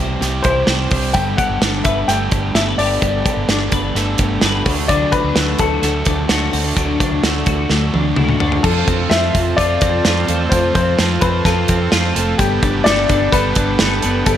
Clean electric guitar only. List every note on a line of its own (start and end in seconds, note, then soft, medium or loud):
0.00 1.15 C3 medium
0.00 0.20 G3 medium
0.00 1.19 C4 medium
0.00 0.43 E4 medium
0.00 0.66 C5 medium
0.20 1.15 G3 medium
0.44 0.91 E4 medium
0.68 1.19 C5 medium
0.91 1.03 D4 medium
1.03 1.19 E4 soft
1.15 3.00 G3 medium
1.39 2.30 G4 medium
1.62 3.48 D4 medium
1.85 2.54 B4 medium
2.09 3.95 A3 medium
2.32 2.77 G4 soft
2.55 2.67 A4 medium
2.67 3.71 B4 soft
2.79 3.24 G4 medium
3.02 4.65 G3 medium
3.25 4.17 G4 medium
3.49 5.12 D4 medium
3.72 4.41 B4 medium
3.95 5.35 A3 medium
4.19 4.70 G4 soft
4.42 4.70 B4 medium
4.66 4.88 D3 medium
4.89 6.75 D3 medium
5.12 5.24 C4 medium
5.24 6.05 D4 soft
5.36 5.82 A3 medium
5.59 6.28 F#4 medium
5.83 7.23 A3 medium
6.06 6.52 D4 medium
6.29 7.45 F#4 medium
6.53 6.64 C4 medium
6.64 6.98 D4 soft
6.76 8.64 D3 medium
7.00 7.93 D4 medium
7.23 7.69 A3 medium
7.46 8.17 F#4 medium
7.70 10.27 A3 medium
7.94 8.39 D4 medium
8.17 8.29 E4 medium
8.29 8.69 F#4 medium
8.40 8.69 D4 medium
8.64 10.51 F3 medium
8.88 9.34 C4 medium
9.11 9.57 F4 medium
9.35 9.81 C4 medium
9.58 10.03 F4 medium
9.82 10.74 C4 medium
10.04 10.98 F4 medium
10.28 12.15 A3 medium
10.52 12.39 F3 medium
10.76 11.21 C4 medium
10.99 11.44 F4 medium
11.22 11.68 C4 medium
11.45 11.91 F4 medium
11.69 12.44 C4 medium
11.92 12.44 F4 medium
12.16 14.03 A3 medium
12.39 14.25 G3 medium
12.63 13.08 D4 medium
12.86 13.32 A4 medium
13.09 13.55 D4 medium
13.32 13.79 A4 medium
13.56 14.37 D4 medium
13.80 14.37 A4 medium
14.03 14.37 B3 medium
14.26 14.37 G3 medium